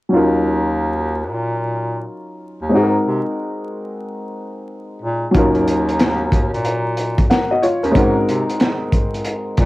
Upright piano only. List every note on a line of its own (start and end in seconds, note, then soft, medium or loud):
0.09 2.68 F#3 medium
0.09 2.68 C#4 medium
0.09 2.69 D#4 medium
0.14 2.70 F4 medium
0.14 2.71 A#4 medium
2.69 5.28 G#3 medium
2.69 5.29 C4 medium
2.69 5.30 D#4 medium
2.75 5.31 F#4 medium
2.75 2.83 G#4 medium
2.83 5.35 A#4 medium
5.31 7.90 F#3 medium
5.31 7.25 C#4 medium
5.31 7.26 D#4 medium
5.36 7.27 F4 medium
5.36 7.28 A#4 medium
7.30 7.50 A#4 medium
7.30 7.50 F#5 medium
7.51 7.62 F#4 medium
7.51 7.62 D#5 medium
7.62 7.83 F4 medium
7.62 7.82 C#5 medium
7.83 8.15 C#4 soft
7.83 7.97 A#4 medium
7.91 9.65 G#3 medium
7.91 9.65 C4 medium
7.91 9.65 D#4 medium
7.97 9.65 F#4 medium
7.97 9.65 A#4 medium